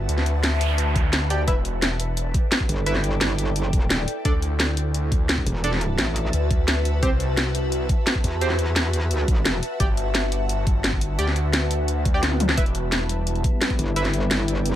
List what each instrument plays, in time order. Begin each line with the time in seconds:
Already playing: ambient pad F#4 B4 E5 A5
0.09 detuned saw bass D2, closed hi-hat, noise sweep
0.18 snare
0.26 closed hi-hat
0.44 snare, closed hi-hat
0.61 open hi-hat
0.78 closed hi-hat
0.96 kick, closed hi-hat
1.13 snare, closed hi-hat
1.30 synth stab G4 D5 G5, open hi-hat
1.48 detuned saw bass E1, synth stab E4 B4 E5, ambient pad E4, kick, closed hi-hat
1.58 ambient pad D5
1.64 ambient pad A4, closed hi-hat
1.82 snare, closed hi-hat
2.00 ambient pad G5, open hi-hat
2.17 closed hi-hat
2.34 kick, closed hi-hat
2.52 snare, closed hi-hat
2.60 kick
2.69 wobble bass G1, open hi-hat
2.86 synth stab E4 B4 E5, closed hi-hat
2.95 snare
3.04 closed hi-hat
3.21 snare, closed hi-hat
3.38 open hi-hat
3.56 closed hi-hat
3.68 wobble bass F1
3.73 kick, closed hi-hat
3.90 wobble bass D#1, snare, closed hi-hat
4.08 open hi-hat
4.25 detuned saw bass D2, synth stab D4 A4 D5, ambient pad F#4, kick, closed hi-hat
4.42 closed hi-hat
4.48 ambient pad B4
4.58 ambient pad A5, snare, closed hi-hat
4.64 ambient pad E5
4.77 open hi-hat
4.94 closed hi-hat
5.12 detuned saw bass D2, kick, closed hi-hat
5.29 snare, closed hi-hat
5.38 kick
5.46 wobble bass E1, open hi-hat
5.64 synth stab D4 A4 D5, closed hi-hat
5.73 snare
5.81 closed hi-hat
5.98 wobble bass A1, snare, closed hi-hat
6.16 open hi-hat
6.33 detuned saw bass D2, closed hi-hat
6.51 kick, closed hi-hat
6.68 snare, closed hi-hat
6.85 open hi-hat
7.03 detuned saw bass C2, synth stab C4 G4 C5, kick, closed hi-hat
7.20 closed hi-hat
7.37 snare, closed hi-hat
7.55 open hi-hat
7.72 closed hi-hat
7.89 kick, closed hi-hat
8.07 snare, closed hi-hat
8.15 kick
8.24 wobble bass E2, open hi-hat
8.41 synth stab C4 G4 C5, closed hi-hat
8.50 snare
8.59 closed hi-hat
8.76 snare, closed hi-hat
8.93 open hi-hat
9.11 closed hi-hat
9.28 kick, closed hi-hat
9.45 snare, closed hi-hat
9.63 open hi-hat
9.80 detuned saw bass G1, synth stab G4 D5 G5, kick, closed hi-hat
9.97 closed hi-hat
10.15 snare, closed hi-hat
10.32 open hi-hat
10.49 closed hi-hat
10.67 detuned saw bass G1, kick, closed hi-hat
10.84 snare, closed hi-hat
10.93 kick
11.01 detuned saw bass G1, open hi-hat
11.19 detuned saw bass D2, synth stab G4 D5 G5, closed hi-hat
11.27 snare
11.36 closed hi-hat
11.53 snare, closed hi-hat
11.71 open hi-hat
11.88 closed hi-hat
12.05 kick, closed hi-hat
12.14 synth stab G4 D5 G5
12.23 snare, closed hi-hat
12.31 high tom
12.40 open hi-hat, mid tom
12.49 snare
12.57 detuned saw bass E1, analog synth pad G3 B3 E4 B4, synth stab E4 B4 E5, ambient pad E4, kick, closed hi-hat
12.66 closed hi-hat
12.73 ambient pad A4, closed hi-hat
12.92 snare, closed hi-hat
12.96 ambient pad D5
13.09 open hi-hat
13.27 closed hi-hat
13.36 closed hi-hat
13.43 ambient pad G5, kick, closed hi-hat
13.62 snare, closed hi-hat
13.70 kick, closed hi-hat
13.79 wobble bass G1, open hi-hat
13.96 synth stab E4 B4 E5, closed hi-hat
14.05 snare, closed hi-hat
14.14 closed hi-hat
14.31 snare, closed hi-hat
14.48 open hi-hat
14.66 closed hi-hat